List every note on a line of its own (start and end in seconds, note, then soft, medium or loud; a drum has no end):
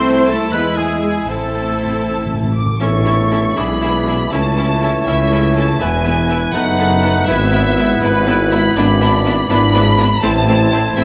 0.00 0.53 C2 medium
0.00 0.49 A3 medium
0.00 0.28 C4 medium
0.00 0.50 E4 medium
0.00 1.25 E4 medium
0.00 0.28 C5 medium
0.00 0.29 C5 loud
0.00 0.28 C6 loud
0.00 0.50 E6 medium
0.28 0.53 A3 medium
0.28 0.53 A4 medium
0.28 0.40 A4 medium
0.28 0.54 A4 medium
0.28 0.52 A5 loud
0.52 1.28 E2 medium
0.52 1.28 G#3 medium
0.52 1.30 G#3 medium
0.52 1.25 G#3 medium
0.52 0.61 B3 medium
0.52 1.27 E4 medium
0.52 0.77 B4 medium
0.52 0.78 B4 medium
0.52 0.79 B4 loud
0.52 0.77 B5 loud
0.52 1.27 E6 medium
0.77 0.86 G#3 medium
0.77 1.02 G#4 medium
0.77 1.01 G#4 medium
0.77 1.02 G#4 medium
0.77 1.00 G#5 medium
1.01 1.11 G#3 medium
1.01 1.28 G#4 medium
1.01 1.14 G#4 medium
1.01 1.27 G#5 medium
1.27 2.56 A1 medium
1.27 1.35 A2 soft
1.27 2.53 A3 medium
1.27 2.55 C4 soft
1.27 2.53 C4 medium
1.27 2.55 C4 medium
1.27 2.55 E4 medium
1.27 2.53 E4 medium
1.27 2.52 A4 medium
1.27 2.55 A4 medium
1.27 2.53 A4 medium
1.27 2.55 A5 medium
1.27 2.26 E6 medium
1.37 1.44 A2 soft
1.45 1.52 A2 soft
1.61 1.67 A2 soft
1.69 1.76 A2 soft
1.85 1.92 A2 soft
1.93 2.00 A2 soft
2.01 2.08 A2 medium
2.10 2.16 A2 medium
2.18 2.25 A2 medium
2.26 2.33 A2 medium
2.34 2.41 A2 medium
2.42 2.48 A2 medium
2.50 2.57 A2 medium
2.54 2.65 A2 medium
2.54 2.78 D6 medium
2.54 2.79 D6 medium
2.66 2.74 A2 medium
2.80 3.48 A1 medium
2.80 3.48 A2 medium
2.80 5.77 E3 medium
2.80 3.52 A3 medium
2.80 2.88 C#4 medium
2.80 2.88 E4 medium
2.80 3.53 E4 medium
2.80 2.88 A4 medium
2.80 3.58 A4 medium
2.80 3.59 C#5 medium
2.80 2.88 E5 medium
2.80 3.57 C#6 medium
2.80 tam-tam medium
3.05 3.13 C#4 medium
3.05 3.13 E4 medium
3.05 3.14 A4 soft
3.05 3.14 E5 medium
3.31 3.39 C#4 medium
3.31 3.39 E4 medium
3.31 3.40 A4 soft
3.31 3.41 E5 medium
3.56 4.23 B1 medium
3.56 4.23 B2 medium
3.56 4.32 G#3 medium
3.56 3.64 D4 medium
3.56 4.30 E4 medium
3.56 3.64 E4 medium
3.56 4.31 G#4 medium
3.56 3.66 G#4 medium
3.56 4.32 D5 medium
3.56 3.66 E5 medium
3.56 4.32 B5 loud
3.56 4.32 B5 medium
3.81 3.89 D4 medium
3.81 3.89 E4 medium
3.81 3.91 G#4 medium
3.81 3.91 E5 medium
4.07 4.15 D4 medium
4.07 4.15 E4 medium
4.07 4.16 G#4 medium
4.07 4.16 E5 medium
4.31 4.98 C#2 medium
4.31 4.98 C#3 medium
4.31 5.06 A3 medium
4.31 4.39 C#4 medium
4.31 4.39 E4 medium
4.31 6.55 E4 medium
4.31 5.05 E4 medium
4.31 4.41 A4 medium
4.31 5.79 C#5 medium
4.31 4.40 E5 medium
4.31 5.06 A5 loud
4.31 5.06 A5 medium
4.57 4.65 C#4 medium
4.57 4.65 E4 medium
4.57 4.65 A4 medium
4.57 4.65 E5 medium
4.81 4.89 C#4 medium
4.81 4.90 E4 medium
4.81 4.91 A4 soft
4.81 4.91 E5 medium
5.06 5.72 C#2 medium
5.06 5.72 C#3 medium
5.06 5.79 A3 medium
5.06 5.15 C#4 medium
5.06 5.79 E4 medium
5.06 5.15 E4 medium
5.06 5.16 A4 medium
5.06 5.55 E5 medium
5.06 5.56 E5 medium
5.06 5.15 E5 medium
5.32 5.40 C#4 medium
5.32 5.40 E4 medium
5.32 5.40 A4 medium
5.32 5.41 E5 medium
5.56 5.65 C#4 medium
5.56 5.65 E4 medium
5.56 5.65 A4 medium
5.56 5.65 E5 medium
5.56 5.80 A5 medium
5.56 5.81 A5 medium
5.80 6.46 E1 medium
5.80 6.46 E2 medium
5.80 6.56 E3 medium
5.80 5.89 B3 medium
5.80 6.54 B3 medium
5.80 5.89 E4 medium
5.80 6.54 E4 medium
5.80 5.88 B4 medium
5.80 8.72 B4 medium
5.80 5.88 E5 medium
5.80 6.54 G#5 loud
5.80 6.53 G#5 medium
6.05 6.14 B3 medium
6.05 6.14 E4 medium
6.05 6.13 B4 medium
6.05 6.13 E5 medium
6.29 6.38 B3 medium
6.29 6.38 E4 medium
6.29 6.37 B4 medium
6.29 6.37 E5 medium
6.53 7.19 F#1 medium
6.53 7.19 F#2 medium
6.53 7.29 A3 medium
6.53 6.62 B3 medium
6.53 7.27 B3 medium
6.53 7.28 D#4 medium
6.53 6.62 D#4 medium
6.53 7.28 D#4 medium
6.53 6.62 A4 medium
6.53 6.62 B4 medium
6.53 7.27 F#5 loud
6.79 6.87 B3 medium
6.79 6.87 D#4 medium
6.79 6.87 A4 medium
6.79 6.87 B4 medium
7.02 7.12 B3 medium
7.02 7.12 D#4 medium
7.02 7.10 A4 medium
7.02 7.10 B4 medium
7.26 7.93 G#1 medium
7.26 7.94 G#2 medium
7.26 9.93 B3 medium
7.26 7.37 B3 medium
7.26 8.01 B3 medium
7.26 7.35 E4 medium
7.26 9.90 E4 medium
7.26 7.37 E4 medium
7.26 8.01 E4 medium
7.26 7.36 B4 medium
7.26 8.02 E5 loud
7.26 8.02 E5 medium
7.52 7.61 B3 medium
7.52 7.60 E4 medium
7.52 7.61 E4 medium
7.52 7.60 B4 medium
7.78 7.86 B3 medium
7.78 7.86 E4 medium
7.78 7.86 B4 medium
8.02 8.67 G#1 medium
8.02 8.67 G#1 loud
8.02 8.68 G#2 medium
8.02 8.75 B3 medium
8.02 8.11 B3 medium
8.02 8.10 E4 medium
8.02 8.75 E4 medium
8.02 8.12 E4 medium
8.02 8.52 B4 loud
8.02 8.12 B4 medium
8.26 8.34 B3 medium
8.26 8.35 E4 medium
8.26 8.36 E4 medium
8.26 8.37 B4 medium
8.51 8.60 B3 medium
8.51 8.59 E4 medium
8.51 8.61 E4 medium
8.51 8.61 B4 medium
8.51 8.73 B5 loud
8.51 8.76 B5 medium
8.74 9.41 G#1 medium
8.74 9.41 G#1 loud
8.74 9.41 G#2 loud
8.74 8.85 B3 medium
8.74 8.85 D4 medium
8.74 9.48 D4 medium
8.74 9.48 E4 medium
8.74 8.86 E4 medium
8.74 9.91 D5 medium
8.74 9.47 B5 loud
8.74 9.18 B5 loud
8.78 8.86 B4 medium
9.01 9.09 B3 medium
9.01 9.09 D4 medium
9.01 9.09 E4 medium
9.01 9.09 B4 medium
9.26 9.34 B3 medium
9.26 9.34 D4 medium
9.26 9.34 E4 medium
9.26 9.34 B4 medium
9.49 10.05 G#1 medium
9.49 10.14 G#1 loud
9.49 10.14 G#2 loud
9.49 9.58 B3 medium
9.49 10.05 D4 medium
9.49 9.58 D4 medium
9.49 10.05 E4 medium
9.49 9.58 E4 medium
9.49 9.58 B4 medium
9.49 10.20 B5 loud
9.49 10.21 B5 loud
9.74 9.82 B3 medium
9.74 9.82 D4 medium
9.74 9.83 E4 medium
9.74 9.83 B4 medium
9.98 10.06 B3 medium
9.98 10.07 D4 medium
9.98 10.06 E4 medium
9.98 10.06 B4 medium
10.21 10.88 A1 medium
10.21 10.88 A1 loud
10.21 10.88 A2 medium
10.21 10.31 A3 medium
10.21 10.96 C4 medium
10.21 10.30 C4 medium
10.21 11.04 C4 medium
10.21 10.95 E4 medium
10.21 11.04 E4 medium
10.21 10.31 E4 medium
10.21 11.04 C5 loud
10.21 10.31 C5 medium
10.21 10.96 A5 loud
10.21 10.97 A5 loud
10.47 10.56 A3 medium
10.47 10.56 C4 medium
10.47 10.56 E4 medium
10.47 10.55 C5 medium
10.72 10.82 A3 medium
10.72 10.81 C4 medium
10.72 10.80 E4 medium
10.72 10.80 C5 medium
10.96 11.04 A1 medium
10.96 11.04 A2 loud
10.96 11.04 A3 medium
10.96 11.04 C4 medium
10.96 11.04 E4 medium
10.96 11.04 C5 medium
10.96 11.04 E5 loud